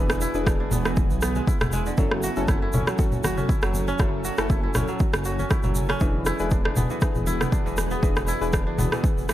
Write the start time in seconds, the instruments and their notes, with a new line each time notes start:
Already playing: detuned saw bass E1, kora E3 B3 D4 E4, ambient pad E3 B3 F#4 G#5, synth stab D4 E4 G#4 B4
0.10 cross-stick, shaker
0.21 kora E4, shaker
0.34 detuned saw bass E1, synth stab D4 E4 G#4 B4, shaker
0.46 kora D4, kick, cross-stick, high conga, shaker
0.60 kora D4
0.71 detuned saw bass E1, kora B3, low conga, shaker
0.85 kora E3, cross-stick, shaker
0.96 kick, high conga, shaker
1.10 detuned saw bass B1, shaker
1.21 kora B3, cross-stick, shaker
1.35 kora G#3, high conga, shaker
1.47 kora E4, kick, high conga, shaker
1.61 detuned saw bass E1, kora E4, cross-stick, low conga, shaker
1.72 kora G#3, mid tom, shaker
1.86 kora D3, shaker
1.97 detuned saw bass F#1, ambient pad F#3 C#4 A4, kora F#3, synth stab C#4 E4 F#4 A4, kick, high conga, shaker
2.11 cross-stick
2.23 kora F#4, shaker
2.36 detuned saw bass F#1, synth stab C#4 E4 F#4 A4, shaker
2.48 kora E4, kick, cross-stick, high conga, shaker
2.62 kora E4
2.73 detuned saw bass F#1, kora C#4, mid tom, low conga, shaker
2.87 kora F#3, cross-stick, shaker
2.98 synth stab C#4 E4 F#4 A4, kick, high conga, shaker
3.12 detuned saw bass F#1, low conga, shaker
3.24 kora F#4, cross-stick, high conga, shaker
3.37 kora C#4, mid tom, shaker
3.49 kora E4, kick, shaker
3.62 detuned saw bass F#1, kora F#3, cross-stick, shaker
3.74 high conga, shaker
3.88 kora C#4, shaker
3.99 detuned saw bass F#1, kora F#3, synth stab C#4 E4 F#4 A4, kick, cross-stick, high conga, shaker
4.25 kora F#4, shaker
4.37 detuned saw bass F#1, synth stab C#4 E4 F#4 A4, cross-stick, shaker
4.50 kora E4, kick, high conga, shaker
4.63 kora E4
4.74 detuned saw bass F#1, kora C#4, cross-stick, low conga, shaker
4.88 kora F#3, shaker
4.99 kick, high conga, shaker
5.13 detuned saw bass F#1, cross-stick, shaker
5.24 kora F#4, shaker
5.39 kora C#4, high conga, shaker
5.50 kora E4, kick, cross-stick, high conga, shaker
5.63 detuned saw bass F#1, kora F#3, low conga, shaker
5.75 mid tom, shaker
5.89 kora C#4, cross-stick, shaker
6.00 detuned saw bass E1, kora E3, ambient pad E3 B3 F#4 G#4, synth stab D4 E4 G#4 B4, kick, high conga, shaker
6.26 kora E4, cross-stick, shaker
6.39 detuned saw bass E1, synth stab D4 E4 G#4 B4, shaker
6.50 kora D4, kick, high conga, shaker
6.65 kora D4, cross-stick
6.76 detuned saw bass E1, kora B3, mid tom, low conga, shaker
6.90 kora E3, shaker
7.01 synth stab D4 E4 G#4 B4, kick, cross-stick, high conga, shaker
7.15 detuned saw bass E1, low conga, shaker
7.26 kora E4, high conga, shaker
7.40 kora B3, cross-stick, mid tom, shaker
7.52 kora D4, kick, shaker
7.66 detuned saw bass E1, kora E3, shaker
7.77 cross-stick, high conga, shaker
7.91 kora B3, shaker
8.02 detuned saw bass E1, synth stab D4 E4 G#4 B4, kick, high conga, shaker
8.16 cross-stick, shaker
8.28 kora E4, shaker
8.41 detuned saw bass E1, synth stab D4 E4 G#4 B4, shaker
8.53 kora D4, kick, cross-stick, high conga, shaker
8.67 kora D4
8.78 detuned saw bass E1, kora B3, mid tom, low conga, shaker
8.92 kora E3, cross-stick, shaker
9.04 kick, high conga, shaker
9.17 detuned saw bass E1, shaker
9.29 kora E3, cross-stick, shaker